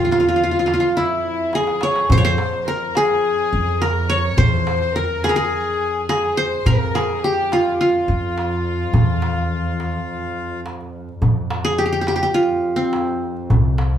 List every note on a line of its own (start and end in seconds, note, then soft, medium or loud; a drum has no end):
0.00 0.85 E2 loud
0.00 2.10 F2 medium
0.00 0.96 F4 medium
0.00 1.00 F4 medium
0.00 0.80 G4 medium
0.05 0.12 F4 medium
0.11 0.19 F4 medium
0.11 darbuka tek medium
0.20 0.28 F4 medium
0.29 0.36 F4 medium
0.36 0.43 F4 medium
0.44 0.51 F4 medium
0.51 0.59 F4 medium
0.59 0.66 F4 medium
0.66 0.73 F4 medium
0.66 darbuka tek medium
0.74 0.80 F4 medium
0.80 1.03 F4 medium
0.95 1.52 E4 medium
0.95 2.36 E4 medium
0.95 1.55 E4 medium
1.11 darbuka ka soft
1.24 darbuka ka soft
1.53 1.82 G#4 medium
1.53 2.10 G#4 medium
1.53 2.76 G#4 medium
1.53 darbuka tek medium
1.67 darbuka ka medium
1.81 2.11 C#5 medium
1.81 2.17 C#5 medium
1.81 darbuka tek medium
1.96 darbuka ka medium
2.10 2.35 F2 loud
2.10 6.66 F2 medium
2.10 2.22 C5 medium
2.10 2.23 C5 medium
2.10 2.24 C5 loud
2.10 darbuka dum medium
2.18 2.31 C#5 medium
2.24 2.58 C5 medium
2.24 2.64 C5 medium
2.24 3.30 C5 loud
2.38 darbuka tek medium
2.60 2.67 C5 medium
2.66 2.95 A#4 medium
2.66 2.87 A#4 medium
2.66 3.81 A#4 medium
2.89 2.96 A#4 medium
2.95 3.84 G#4 medium
2.95 3.81 G#4 medium
2.95 4.18 G#4 loud
2.95 darbuka tek medium
3.38 darbuka ka soft
3.53 4.29 F2 medium
3.81 4.10 A#4 medium
3.81 4.95 A#4 medium
3.81 4.10 A#4 medium
3.81 darbuka tek medium
3.95 darbuka ka soft
4.09 4.38 C#5 medium
4.09 4.44 C#5 loud
4.09 4.38 C#5 medium
4.24 darbuka ka soft
4.37 5.40 E2 loud
4.37 4.79 C5 medium
4.37 5.43 C5 loud
4.37 4.96 C5 medium
4.37 darbuka dum medium
4.67 darbuka tek medium
4.80 4.95 C5 medium
4.94 5.24 A#4 medium
4.94 5.23 A#4 medium
4.94 5.29 A#4 medium
5.22 5.37 G#4 medium
5.22 5.35 G#4 medium
5.22 5.36 G#4 loud
5.22 darbuka tek medium
5.29 6.42 A#4 medium
5.36 6.09 G#4 medium
5.36 6.04 G#4 medium
5.36 6.05 G#4 medium
5.66 darbuka ka soft
6.09 6.38 G#4 medium
6.09 6.35 G#4 medium
6.09 6.95 G#4 medium
6.09 darbuka tek medium
6.37 6.66 C5 medium
6.37 7.43 C5 loud
6.37 6.66 C5 medium
6.52 darbuka ka soft
6.65 6.91 F2 medium
6.65 11.21 F2 medium
6.65 6.95 A#4 medium
6.65 7.80 A#4 loud
6.65 7.16 A#4 medium
6.65 darbuka dum medium
6.94 7.23 G#4 medium
6.94 7.30 G#4 medium
6.94 darbuka tek medium
7.17 7.23 G#4 medium
7.22 7.52 G4 medium
7.22 8.50 G4 medium
7.51 7.73 F4 medium
7.51 7.79 F4 medium
7.51 7.80 F4 medium
7.51 darbuka tek medium
7.72 7.79 G4 soft
7.80 10.61 F4 medium
7.94 darbuka ka soft
8.08 8.85 F2 medium
8.38 darbuka tek medium
8.51 darbuka ka soft
8.79 darbuka ka soft
8.93 9.96 E2 loud
8.93 darbuka dum medium
9.22 darbuka tek medium
9.51 darbuka ka soft
9.80 darbuka tek medium
10.08 darbuka ka soft
10.23 darbuka ka soft
10.66 darbuka tek medium
10.81 darbuka ka soft
11.09 darbuka ka soft
11.21 13.98 F2 medium
11.21 12.24 F2 medium
11.21 darbuka dum medium
11.50 darbuka tek medium
11.65 11.84 G#4 medium
11.78 11.85 G4 medium
11.78 darbuka ka soft
11.86 11.92 G4 medium
11.93 12.01 G4 medium
12.01 12.08 G4 medium
12.07 12.15 G4 medium
12.07 darbuka tek medium
12.16 12.22 G4 medium
12.23 13.48 G4 medium
12.34 13.69 F4 medium
12.50 darbuka ka soft
12.76 13.98 C4 medium
12.93 darbuka tek medium
13.07 darbuka ka soft
13.37 darbuka ka soft
13.50 13.98 C2 medium
13.50 darbuka dum medium
13.78 darbuka tek medium